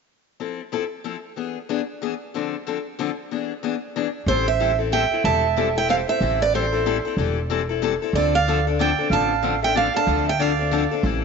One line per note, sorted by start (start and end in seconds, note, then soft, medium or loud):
0.40 0.60 F3 soft
0.40 0.60 C4 medium
0.40 0.60 E4 medium
0.40 0.60 A4 soft
0.72 0.83 F3 medium
0.72 0.83 C4 medium
0.72 0.83 E4 medium
0.72 0.83 A4 medium
1.04 1.15 F3 medium
1.04 1.15 C4 medium
1.04 1.15 E4 medium
1.04 1.16 A4 medium
1.36 1.57 E3 soft
1.36 1.57 B3 soft
1.36 1.57 D4 soft
1.36 1.57 G#4 soft
1.69 1.80 E3 medium
1.69 1.80 B3 medium
1.69 1.80 D4 medium
1.69 1.80 G#4 medium
2.02 2.12 E3 medium
2.02 2.13 B3 medium
2.02 2.13 D4 medium
2.02 2.13 G#4 medium
2.34 2.54 D3 medium
2.34 2.54 F3 medium
2.34 2.55 C4 medium
2.34 2.55 D4 medium
2.34 2.55 A4 medium
2.67 2.77 D3 medium
2.67 2.77 F3 medium
2.67 2.77 C4 medium
2.67 2.77 D4 medium
2.67 2.78 A4 medium
2.99 3.09 D3 medium
2.99 3.09 F3 medium
2.99 3.10 C4 medium
2.99 3.10 D4 medium
2.99 3.10 A4 medium
3.31 3.51 E3 medium
3.31 3.51 B3 soft
3.31 3.51 D4 medium
3.31 3.52 G#4 medium
3.63 3.74 E3 medium
3.63 3.74 B3 medium
3.63 3.74 D4 medium
3.63 3.74 G#4 medium
3.96 4.06 E3 medium
3.96 4.06 B3 medium
3.96 4.07 D4 medium
3.96 4.07 G#4 medium
4.26 5.04 A1 medium
4.26 4.47 E3 medium
4.26 4.48 G3 medium
4.26 4.48 C4 medium
4.26 4.48 E4 medium
4.26 4.46 A4 medium
4.26 4.48 A4 medium
4.26 4.46 C5 medium
4.48 4.77 C5 medium
4.48 4.77 E5 medium
4.60 4.70 E3 medium
4.60 4.71 G3 medium
4.60 4.71 C4 medium
4.60 4.71 E4 medium
4.60 4.71 A4 medium
4.79 4.91 C4 soft
4.79 4.92 E4 soft
4.79 4.91 A4 soft
4.92 5.03 E3 medium
4.92 5.03 G3 medium
4.92 5.03 C4 medium
4.92 5.03 E4 medium
4.92 5.04 A4 medium
4.92 5.22 E5 medium
4.92 5.24 G5 medium
5.12 5.24 C4 soft
5.12 5.24 E4 soft
5.12 5.24 A4 soft
5.24 6.01 E1 medium
5.24 5.45 E3 medium
5.24 5.45 G3 medium
5.24 5.45 C4 medium
5.24 5.45 E4 medium
5.24 5.45 A4 medium
5.24 5.72 E5 medium
5.24 5.77 A5 loud
5.56 5.67 E3 medium
5.56 5.68 G3 medium
5.56 5.68 C4 medium
5.56 5.68 E4 medium
5.56 5.68 A4 medium
5.76 5.88 C4 soft
5.76 5.89 E4 soft
5.76 5.88 A4 soft
5.76 5.88 E5 medium
5.76 5.90 G5 medium
5.89 5.99 E3 medium
5.89 6.00 G3 medium
5.89 6.00 C4 medium
5.89 6.00 E4 medium
5.89 6.00 A4 medium
5.89 6.05 C5 medium
5.89 5.95 F5 medium
6.08 6.21 C4 soft
6.08 6.21 E4 soft
6.08 6.20 A4 soft
6.08 6.41 C5 medium
6.08 6.42 E5 medium
6.21 6.98 A1 medium
6.21 6.41 E3 medium
6.21 6.41 G3 medium
6.21 6.41 C4 medium
6.21 6.42 E4 medium
6.21 6.42 A4 medium
6.41 6.53 B4 medium
6.41 6.54 D5 medium
6.54 6.64 E3 medium
6.54 6.65 G3 medium
6.54 6.65 C4 medium
6.54 6.65 E4 medium
6.54 6.65 A4 medium
6.54 7.15 A4 medium
6.54 7.15 C5 medium
6.72 6.85 C4 soft
6.72 6.85 E4 soft
6.72 6.85 A4 soft
6.86 6.96 E3 medium
6.86 6.97 G3 medium
6.86 6.97 C4 medium
6.86 6.97 E4 medium
6.86 6.97 A4 medium
7.05 7.17 C4 soft
7.05 7.18 E4 soft
7.05 7.17 A4 medium
7.17 7.94 E1 medium
7.17 7.38 E3 medium
7.17 7.38 G3 medium
7.17 7.38 C4 medium
7.17 7.38 E4 medium
7.17 7.39 A4 medium
7.50 7.61 E3 medium
7.50 7.61 G3 medium
7.50 7.61 C4 medium
7.50 7.61 E4 medium
7.50 7.61 A4 medium
7.69 7.82 C4 soft
7.69 7.82 E4 soft
7.69 7.81 A4 soft
7.82 7.93 E3 medium
7.82 7.93 G3 medium
7.82 7.93 C4 medium
7.82 7.93 E4 medium
7.82 7.94 A4 medium
8.02 8.15 C4 soft
8.02 8.15 E4 soft
8.02 8.14 A4 soft
8.13 8.91 D2 medium
8.13 8.35 D3 medium
8.13 8.35 F3 medium
8.13 8.35 C4 medium
8.13 8.35 D4 medium
8.13 8.32 A4 medium
8.13 8.36 A4 medium
8.13 8.35 D5 medium
8.35 8.65 D5 medium
8.35 8.65 F5 medium
8.48 8.58 D3 medium
8.48 8.58 F3 medium
8.48 8.58 C4 medium
8.48 8.58 D4 medium
8.48 8.59 A4 medium
8.67 8.79 C4 soft
8.67 8.79 D4 medium
8.67 8.79 A4 medium
8.78 8.90 D3 medium
8.78 8.90 F3 medium
8.78 8.90 C4 medium
8.78 8.90 D4 medium
8.78 8.90 A4 medium
8.78 9.08 D5 medium
8.78 9.10 G5 medium
8.99 9.11 C4 soft
8.99 9.11 D4 soft
8.99 9.11 A4 medium
9.10 9.88 A1 medium
9.10 9.31 D3 medium
9.10 9.32 F3 medium
9.10 9.32 C4 medium
9.10 9.32 D4 medium
9.10 9.32 A4 medium
9.10 9.59 F5 medium
9.10 9.64 A5 medium
9.43 9.54 D3 medium
9.43 9.54 F3 medium
9.43 9.54 C4 medium
9.43 9.54 D4 medium
9.43 9.55 A4 medium
9.62 9.74 C4 soft
9.62 9.75 D4 soft
9.62 9.75 A4 soft
9.62 9.74 E5 medium
9.62 9.77 G5 medium
9.75 9.86 D3 medium
9.75 9.86 F3 medium
9.75 9.87 C4 medium
9.75 9.87 D4 medium
9.75 9.87 A4 medium
9.75 9.94 D5 medium
9.75 9.96 F5 medium
9.94 10.06 C4 soft
9.94 10.07 D4 soft
9.94 10.07 A4 soft
9.94 10.25 F5 medium
9.94 10.26 A5 loud
10.07 10.85 D2 medium
10.07 10.28 D3 medium
10.07 10.28 F3 medium
10.07 10.28 C4 medium
10.07 10.28 D4 medium
10.07 10.28 A4 medium
10.27 10.41 E5 medium
10.27 10.42 G5 medium
10.39 10.51 D3 medium
10.39 10.51 F3 medium
10.39 10.51 C4 medium
10.39 10.51 D4 medium
10.39 10.51 A4 medium
10.39 11.04 D5 medium
10.39 11.05 F5 medium
10.59 10.71 C4 soft
10.59 10.71 D4 soft
10.59 10.72 A4 soft
10.71 10.83 D3 medium
10.71 10.83 F3 medium
10.71 10.83 C4 medium
10.71 10.83 D4 medium
10.71 10.83 A4 medium
10.91 11.04 C4 soft
10.91 11.04 D4 medium
10.91 11.04 A4 medium
11.03 11.25 A1 medium
11.03 11.25 E3 medium
11.03 11.25 G3 medium
11.03 11.25 C4 medium
11.03 11.25 E4 medium
11.03 11.25 A4 medium